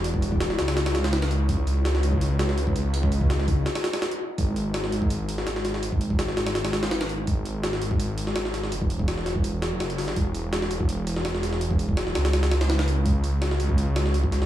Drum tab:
HH |o-o-o-ooooooooo-|o-o-o-o-o-o-o-o-|o-o-o-o-ooooox--|o-o-o-o-o-o-o-o-|
SD |----oooooooooo--|----oo----oo----|----oo--ooooo---|----oo-----ooooo|
BD |-o-o------------|o------o-----o--|-o-o--o---------|o------o--------|

HH |o-o-o-ooooooooo-|o-o-o-o-o-o-o-o-|o-o-o-o-o-o-oxo-|o-o-o-o-o-o-o-o-|
SD |----oooooooooo--|----oo-----ooooo|----ooo---o-o-oo|----oo-----ooooo|
BD |-o-o------------|o------o--------|-o-o---o--------|o------o--------|

HH |o-o-o-ooooooooo-|o-o-o-o-o-o-o-o-|
SD |----oooooooooo--|----oo----oo--oo|
BD |-o-o------------|o------o-----o--|